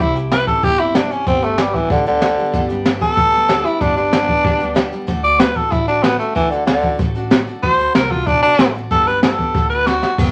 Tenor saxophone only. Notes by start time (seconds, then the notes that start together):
0.00 E4
0.32 B4
0.48 A4
0.64 G4
0.80 E4
0.96 D4
1.11 C#4
1.27 C4
1.43 A3
1.60 G3
1.75 E3
1.91 D3
2.07 D3
3.02 A4
3.65 E4
3.81 D4
3.97 D4
5.24 D5
5.40 B4
5.56 A4
5.72 E4
5.88 D4
6.03 B3
6.19 A3
6.35 E3
6.50 D3
6.66 D3
7.63 C5
7.95 A#4
8.11 F4
8.27 D4
8.42 D4
8.91 A4
9.07 B4
9.23 A4
9.70 B4
9.87 F#4